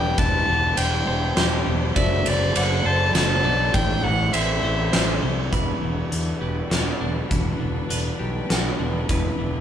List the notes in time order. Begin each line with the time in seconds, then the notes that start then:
Already playing: E1 D3 E3 G3 B3 D4 G4 B4 D5 G5
0.18 E1 E3 C5 A5, kick, ride
0.48 E1 D3
0.77 E1 G3 C5 G5, ride
1.08 E1 C5
1.36 E1 G4 C5, snare, ride
1.66 E1 G3
1.96 F#1 F#3 A4 D5 E5, kick, ride
2.26 F#1 A3 D5, ride
2.56 F#1 D4 F#5, ride
2.85 F#1 C5 A5
3.14 F#1 F#4 A5, snare, ride
3.44 B1 D4 D5
3.74 A1 A2 E3 C4 A4 G5, kick, ride
4.03 A1 A3 F#5
4.33 A1 C4 C5 E5, ride
4.63 A1 C5
4.92 A1 E4 C5, snare, ride
5.22 C2 C4
5.52 E1 E3 G3 D4 F#4 B4, kick, closed hi-hat
5.82 E1 D3
6.11 E2 D3, closed hi-hat
6.41 E1 G3 B4
6.70 E1 F#4, snare, closed hi-hat
7.01 E1 D3 D5
7.31 E1 E3, kick, closed hi-hat
7.60 E1 D3
7.89 E1 D3 B4, closed hi-hat
8.19 B1 G3
8.49 B1 F#4 A4, snare, closed hi-hat
8.79 E1 D3
9.09 E1 E3 G3 E4 B4, kick, closed hi-hat
9.39 E1 D3